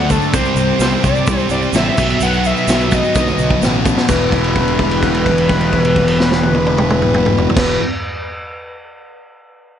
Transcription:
Already playing: D2 D3 F#3 A3 D4 A4 D5 F#5
0.10 A3 D4 A4, kick, shaker
0.21 shaker
0.33 C2 C3 E3 G3 C4 G4 C5, kick, crash, shaker
0.45 shaker
0.55 C2, shaker
0.79 C2 C3 G3 C4, snare, crash, shaker
1.03 C2 G3 C4 D5, kick, shaker
1.16 shaker
1.27 C2, kick, crash, shaker
1.39 shaker
1.49 C2 D5, shaker
1.62 shaker
1.73 A1 C3 G3 C4 E5, snare, crash, shaker
1.97 B1 B2 D#3 F#3 B3 F#4 B4, kick, crash, shaker
2.10 shaker
2.20 B1 B2 F#3 B3 F#5, crash, shaker
2.33 shaker
2.44 E5, shaker
2.57 shaker
2.68 B1 B2 F#3 B3, snare, crash, shaker
2.80 shaker
2.91 F#3 B3 D#5, kick, shaker
3.04 shaker
3.15 B1, kick, shaker
3.27 high tom, shaker
3.38 B1, shaker
3.51 kick
3.61 A1 B2 F#3 B3, snare, shaker
3.85 F#3 B3, kick, shaker
3.98 snare, shaker
4.08 E1 E2 B2 E3 G3 B3 G4 B4, kick, crash, shaker
4.32 kick, crash
4.44 crash
4.56 kick, crash
4.68 crash
4.79 kick, crash
4.91 crash
5.03 kick, crash
5.14 crash
5.26 kick, crash
5.38 crash
5.49 kick, crash
5.61 crash
5.73 kick, crash
5.85 crash
5.96 kick, crash
6.08 crash
6.20 snare
6.32 snare
6.43 high tom
6.55 high tom
6.66 high tom
6.78 mid tom
6.90 mid tom
7.02 mid tom
7.14 mid tom
7.26 mid tom
7.38 floor tom
7.50 floor tom
7.55 E1 E2 B2 E3 G3 B3 G4 B4, kick, snare, crash
7.59 E3

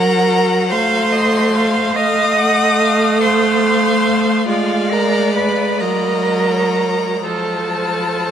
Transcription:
Already playing: F#3 A#4 F#5 A#5
0.70 A3 C5 F5 C6
1.12 D#5
1.54 F5
1.94 A3 D#5 F5 D#6
2.37 F#5
2.79 F5
3.21 C5 F5 C6
4.48 G#3 F4 D5 F5
4.91 A#4 A#5
5.36 B4 B5
5.80 F#3 A#4 D#5 A#5
6.52 C#5
7.25 F3 A4 C5 A5

